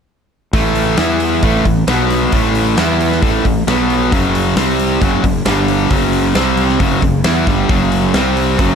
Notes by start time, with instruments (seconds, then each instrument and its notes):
0.53 fingered electric bass A1, distorted electric guitar A2 E3 A3, kick, open hi-hat
0.75 open hi-hat
0.97 fingered electric bass E2, distorted electric guitar E3 B3 E4, snare, open hi-hat
1.20 open hi-hat
1.43 fingered electric bass A1, distorted electric guitar A2 E3 A3, kick, open hi-hat
1.65 fingered electric bass A1, distorted electric guitar A2 E3, kick, open hi-hat
1.87 fingered electric bass B1, distorted electric guitar B2 F#3 B3, snare, open hi-hat
2.10 snare, open hi-hat
2.32 fingered electric bass A1, distorted electric guitar A2 E3 A3, kick, open hi-hat
2.55 open hi-hat
2.77 fingered electric bass E2, distorted electric guitar E3 B3 E4, snare, open hi-hat
3.01 open hi-hat
3.12 snare
3.22 fingered electric bass A1, distorted electric guitar A2 E3 A3, kick, open hi-hat
3.45 fingered electric bass A1, distorted electric guitar A2 E3, kick, open hi-hat
3.67 fingered electric bass B1, distorted electric guitar B2 F#3 B3, snare, open hi-hat
3.90 open hi-hat
4.12 fingered electric bass F#1, distorted electric guitar F#2 C#3 F#3, kick, open hi-hat
4.35 open hi-hat
4.56 fingered electric bass C2, distorted electric guitar C3 G3 C4, snare, open hi-hat
4.80 open hi-hat
5.01 fingered electric bass F#1, distorted electric guitar F#2 C#3 F#3, kick, open hi-hat
5.24 fingered electric bass F#1, distorted electric guitar F#2 C#3, kick, open hi-hat
5.46 fingered electric bass G1, distorted electric guitar G2 D3 G3, snare, open hi-hat
5.68 open hi-hat
5.90 fingered electric bass F#1, distorted electric guitar F#2 C#3 F#3, kick, open hi-hat
6.13 open hi-hat
6.35 fingered electric bass C2, distorted electric guitar C3 G3 C4, snare, open hi-hat
6.57 open hi-hat
6.69 snare
6.80 fingered electric bass F#1, distorted electric guitar F#2 C#3 F#3, kick, open hi-hat
7.02 fingered electric bass F#1, distorted electric guitar F#2 C#3, kick, open hi-hat
7.23 fingered electric bass E2, distorted electric guitar E3 B3 E4, snare, open hi-hat
7.47 fingered electric bass G1, distorted electric guitar G2 D3 G3, kick, snare, open hi-hat
7.69 fingered electric bass F#1, distorted electric guitar F#2 C#3 F#3, kick, open hi-hat
7.92 open hi-hat
8.14 fingered electric bass C2, distorted electric guitar C3 G3 C4, snare, open hi-hat
8.37 open hi-hat
8.58 fingered electric bass F#1, distorted electric guitar F#2 C#3 F#3, kick, open hi-hat